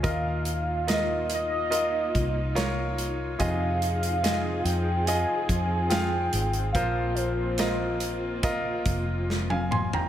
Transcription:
<<
  \new Staff \with { instrumentName = "Soft synth lead" } { \time 4/4 \key ees \mixolydian \tempo 4 = 72 f''4 ees''8 ees''2 r8 | f''4. g''8 aes''4 g''4 | f''8 c''2 r4. | }
  \new Staff \with { instrumentName = "Grand piano" } { \time 4/4 \key ees \mixolydian <f' bes' ees''>4 <f' bes' ees''>4 <f' bes' ees''>4 <f' bes' des''>4 | <f' aes' ees''>4 <f' aes' ees''>4 <f' aes' ees''>4 <f' aes' f''>4 | <f' bes' c''>4 <f' bes' ees''>4 <f' bes' ees''>4 r16 <f'' aes''>16 <aes'' c'''>16 <g'' bes''>16 | }
  \new Staff \with { instrumentName = "Grand piano" } { \clef bass \time 4/4 \key ees \mixolydian bes,4. r2 r8 | c4. r2 r8 | <bes, f>4. r2 r8 | }
  \new Staff \with { instrumentName = "String section" } { \time 4/4 \key ees \mixolydian << { <bes ees' f'>1 | <f f' aes'>1 | <bes f'>1 | } \\ { r1 | c'1~ | c'1 | } >> }
  \new Staff \with { instrumentName = "Fingered electric bass" } { \clef bass \time 4/4 \key ees \mixolydian ees,2~ ees,8 c,4. | f,4. f,8. r16 f,4 aes,,8 | bes,,2~ bes,,8 f,,4. | }
  \new DrumStaff \with { instrumentName = "Drums" } \drummode { \time 4/4 <hh bd>8 hh8 <hh sn>8 hh8 hh8 <hh bd>8 <hh sn>8 hh8 | <hh bd>8 hh16 hh16 <hh sn>8 hh8 hh8 <hh bd>8 <hh sn>8 hh16 hh16 | <hh bd>8 hh8 <hh sn>8 hh8 <hh bd>8 <hh bd>8 sn16 tommh16 toml16 tomfh16 | }
>>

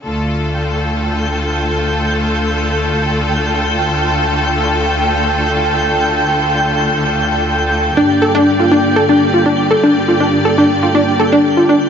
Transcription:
<<
  \new Staff \with { instrumentName = "Synth texture" } { \time 4/4 \key d \minor \tempo 4 = 121 <g'' g'''>1~ | <g'' g'''>1~ | <g'' g'''>1~ | <g'' g'''>1~ |
<g'' g'''>1~ | <g'' g'''>1 | }
  \new Staff \with { instrumentName = "Synth pluck" } { \time 4/4 \key d \minor r1 | r1 | r1 | r1 |
d'16 r16 a'16 d'16 r16 f'16 d'16 r16 a'16 d'16 r16 f'16 d'16 r16 a'16 d'16 | r16 f'16 d'16 r16 a'16 d'16 r16 f'16 d'16 r16 a'16 d'16 r16 f'16 d'16 r16 | }
  \new Staff \with { instrumentName = "String section" } { \time 4/4 \key d \minor << { <d, a f' a'>1~ | <d, a f' a'>1~ | <d, a f' a'>1~ | <d, a f' a'>1 |
<g, bes g' d''>1~ | <g, bes g' d''>1 | } \\ { d1~ | d1~ | d1~ | d1~ |
d1~ | d1 | } >> }
>>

